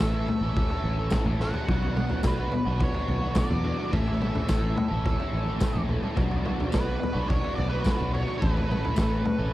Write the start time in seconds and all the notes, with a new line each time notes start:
Already playing: B4 E5 A5 C#6
0.00 A1 A2 E3 A3 C#4 A4, kick, snare, tambourine
0.13 A3 C#4 A4
0.28 muted overdriven electric guitar stroke, floor tom, mid tom
0.41 A1 C#4 A4
0.45 A3
0.56 kick, floor tom
0.70 A3 C#4 A4, floor tom
0.84 A1
0.99 A3 C#4 A4
1.10 A2 E3 A3, kick, snare, mid tom, tambourine
1.14 C#4 A4
1.26 A1 C#4 A4, floor tom
1.30 A3
1.40 E3 A3 C#4 A4 F#5, snare
1.54 A3 C#4 A4, floor tom
1.68 B1 B2 F#3 B3 D4 F#5 B5, kick, floor tom
1.73 F#4
1.82 floor tom
1.97 F#3 B3 D4 F#4, mid tom
2.09 floor tom
2.23 B1 B2 F#3 B3 D4 F#4 B4, kick, snare, tambourine
2.39 B3 D4 F#4
2.52 muted overdriven electric guitar stroke, floor tom, mid tom
2.66 B1 B3 D4 F#4
2.80 C#5, kick, floor tom
2.93 B3 D4 F#4, floor tom
3.08 B1, floor tom
3.21 B3 D4 F#4
3.35 B2 F#3 B3 D4 F#4 D5, kick, snare, mid tom, tambourine
3.49 E2 B3 D4 F#4, floor tom
3.63 F#3 B3 D4 F#4, floor tom
3.78 B3 D4 F#4
3.91 A1 A2 E3 A3 C#4 A4 E5 A5 C#6, kick, floor tom
4.07 floor tom
4.19 E3 A3 C#4 A4, mid tom
4.35 floor tom
4.46 A1 A2 E3 A3 C#4 A4, kick, snare, tambourine
4.62 A3 C#4 A4
4.76 muted overdriven electric guitar stroke, floor tom, mid tom
4.88 A1 A3 C#4 A4
5.05 kick, floor tom
5.18 A3 C#4 A4, floor tom
5.33 A1
5.46 A3 C#4 A4
5.58 A2 E3 A3 C#4 A4, kick, snare, mid tom, tambourine
5.73 A#1 A3 C#4 A4, floor tom
5.87 E3 A3 C#4 A4, floor tom
6.01 A3 C#4 A4, mid tom
6.15 B1 B2 F#3 B3 D4 F#4 B4 D5 F#5 D6, kick, floor tom
6.31 floor tom
6.43 F#3 B3 D4 F#4, mid tom
6.60 floor tom
6.70 B2 F#3 B3 D4 F#4 B4, kick, snare, tambourine
6.75 B1
6.85 B3 D4 F#4
7.00 muted overdriven electric guitar stroke, floor tom, mid tom
7.13 B1 B3 D4 F#4
7.29 C#5, kick, floor tom
7.41 B3 D4 F#4, floor tom
7.55 B1 D5, floor tom
7.68 B3 D4 F#4 B4
7.84 B2 F#3 B3 D4 F#4, kick, snare, mid tom, tambourine
7.97 B1 B3 D4 F#4, floor tom
8.11 F#3 B3 D4 F#4 C#5, floor tom
8.26 B3 D4 F#4
8.38 A2 E3 A3 C#4 A4 B4 E5 A5 C#6
8.42 A1, kick, floor tom
8.57 floor tom
8.67 E3 A3 C#4 A4
8.71 mid tom
8.85 floor tom
8.95 A1 A2 E3 A3 C#4 A4, kick, snare, tambourine
9.10 A3 C#4 A4
9.25 muted overdriven electric guitar stroke, floor tom, mid tom
9.38 A1 A3 C#4 A4